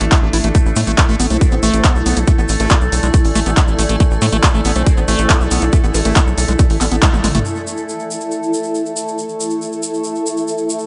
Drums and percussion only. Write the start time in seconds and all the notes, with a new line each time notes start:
0.01 closed hi-hat
0.12 kick, clap, closed hi-hat
0.33 open hi-hat
0.44 closed hi-hat
0.55 kick, closed hi-hat, shaker
0.66 shaker
0.76 open hi-hat, shaker
0.87 closed hi-hat, shaker
0.98 kick, clap, closed hi-hat, shaker
1.09 shaker
1.20 open hi-hat, shaker
1.30 closed hi-hat, shaker
1.41 kick, closed hi-hat, shaker
1.51 shaker
1.63 open hi-hat, shaker
1.74 closed hi-hat, shaker
1.84 kick, clap, closed hi-hat, shaker
1.96 shaker
2.06 open hi-hat, shaker
2.16 closed hi-hat, shaker
2.27 kick, closed hi-hat, shaker
2.39 shaker
2.48 open hi-hat, shaker
2.60 closed hi-hat, shaker
2.70 kick, clap, closed hi-hat, shaker
2.81 shaker
2.92 open hi-hat, shaker
3.03 closed hi-hat, shaker
3.14 kick, closed hi-hat, shaker
3.25 open hi-hat, shaker
3.35 open hi-hat, shaker
3.46 closed hi-hat, shaker
3.57 kick, clap, closed hi-hat, shaker
3.68 shaker
3.79 open hi-hat, shaker
3.89 closed hi-hat, shaker
4.00 kick, closed hi-hat, shaker
4.11 shaker
4.22 open hi-hat, shaker
4.33 closed hi-hat, shaker
4.43 kick, clap, closed hi-hat, shaker
4.54 shaker
4.65 open hi-hat, shaker
4.76 closed hi-hat, shaker
4.86 kick, closed hi-hat, shaker
4.97 shaker
5.08 open hi-hat, shaker
5.18 closed hi-hat, shaker
5.30 kick, clap, closed hi-hat, shaker
5.41 shaker
5.51 open hi-hat, shaker
5.62 closed hi-hat, shaker
5.72 kick, closed hi-hat, shaker
5.84 shaker
5.94 open hi-hat, shaker
6.05 closed hi-hat, shaker
6.16 kick, clap, closed hi-hat, shaker
6.27 shaker
6.38 open hi-hat, shaker
6.48 closed hi-hat, shaker
6.59 kick, closed hi-hat, shaker
6.70 open hi-hat, shaker
6.81 clap, open hi-hat, shaker
6.92 closed hi-hat, shaker
7.02 kick, clap, closed hi-hat, high tom, shaker
7.13 high tom, shaker
7.24 open hi-hat, mid tom, shaker
7.35 closed hi-hat, mid tom, shaker
7.45 shaker
7.55 shaker
7.67 shaker
7.77 shaker
7.89 shaker
8.00 shaker
8.11 shaker
8.21 shaker
8.31 shaker
8.43 shaker
8.54 shaker
8.63 shaker
8.75 shaker
8.86 shaker
8.96 shaker
9.08 shaker
9.18 shaker
9.29 shaker
9.40 shaker
9.50 shaker
9.62 shaker
9.72 shaker
9.83 shaker
9.94 shaker
10.04 shaker
10.15 shaker
10.26 shaker
10.37 shaker
10.48 shaker
10.58 shaker
10.70 shaker
10.79 shaker